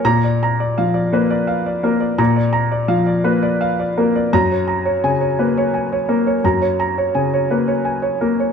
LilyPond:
<<
  \new Staff \with { instrumentName = "Grand piano" } { \time 3/4 \key fis \major \tempo 4 = 84 << { ais''8 r2 r8 | r2. | ais''8 r2 r8 | r2. | } \\ { r16 d''16 ais''16 d''16 eis''16 d''16 b'16 d''16 eis''16 d''16 ais'16 d''16 | ais''16 d''16 ais''16 d''16 eis''16 d''16 b'16 d''16 eis''16 d''16 ais'16 d''16 | r16 cis''16 ais''16 cis''16 gis''16 cis''16 b'16 cis''16 gis''16 cis''16 ais'16 cis''16 | ais''16 cis''16 ais''16 cis''16 gis''16 cis''16 b'16 cis''16 gis''16 cis''16 ais'16 cis''16 | } >> }
  \new Staff \with { instrumentName = "Grand piano" } { \clef bass \time 3/4 \key fis \major ais,4 eis8 ais4 ais8 | ais,4 eis8 ais4 ais8 | fis,4 cis8 ais4 ais8 | fis,4 cis8 ais4 ais8 | }
>>